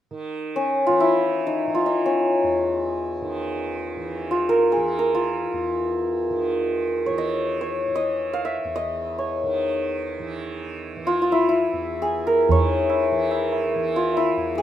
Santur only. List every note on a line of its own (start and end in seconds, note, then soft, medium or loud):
0.56 2.05 C#4 medium
0.87 1.06 F4 medium
1.00 1.53 E4 medium
1.47 1.86 D#4 medium
1.75 4.30 F4 medium
1.86 5.48 D#4 medium
2.06 5.94 C#4 medium
4.31 5.14 F4 medium
4.49 4.98 A#4 medium
4.72 7.77 G#4 medium
4.99 7.83 A#4 medium
5.15 8.51 F4 medium
7.06 7.61 C#5 medium
7.18 7.95 D#5 medium
7.61 9.18 C#5 medium
7.95 8.51 D#5 medium
8.33 8.51 F5 medium
8.45 8.82 E5 medium
8.76 11.14 D#5 medium
9.18 11.75 C#5 medium
11.07 11.21 F4 medium
11.22 11.55 F4 medium
11.32 11.48 E4 medium
11.49 14.02 E4 medium
12.02 14.58 G#4 medium
12.27 14.62 A#4 medium
12.52 14.62 C#5 medium
13.96 14.23 F4 medium
14.17 14.62 E4 medium
14.58 14.62 G#4 medium